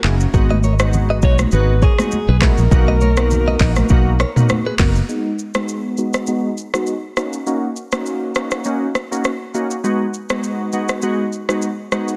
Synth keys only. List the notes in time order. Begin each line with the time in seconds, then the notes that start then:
0.04 A#3 C#4 D#4 F#4
0.33 G#3 B3 D#4 F#4
0.79 G#3 B3 D#4 F#4
1.22 G#3 B3 D#4 F#4
1.52 G#3 B3 D#4 F#4
1.98 G#3 B3 D#4 F#4
2.41 G#3 B3 D#4 F#4
2.71 A#3 B3 D#4 F#4
3.17 A#3 B3 D#4 F#4
3.60 A#3 B3 D#4 F#4
3.90 A#3 B3 D#4 F#4
4.36 A#3 B3 D#4 F#4
4.79 A#3 B3 D#4 F#4
5.09 G#3 B3 D#4 F#4
5.55 G#3 B3 D#4 F#4
5.98 G#3 B3 D#4 F#4
6.28 G#3 B3 D#4 F#4
6.74 G#3 B3 D#4 F#4
7.17 A#3 C#4 D#4 F#4
7.46 A#3 C#4 D#4 F#4
7.92 A#3 C#4 D#4 F#4
8.36 A#3 C#4 D#4 F#4
8.65 A#3 C#4 D#4 F#4
9.11 A#3 C#4 D#4 F#4
9.54 A#3 C#4 D#4 F#4
9.84 G#3 B3 D#4 F#4
10.30 G#3 B3 D#4 F#4
10.73 G#3 B3 D#4 F#4
11.03 G#3 B3 D#4 F#4
11.49 G#3 B3 D#4 F#4
11.92 G#3 B3 D#4 F#4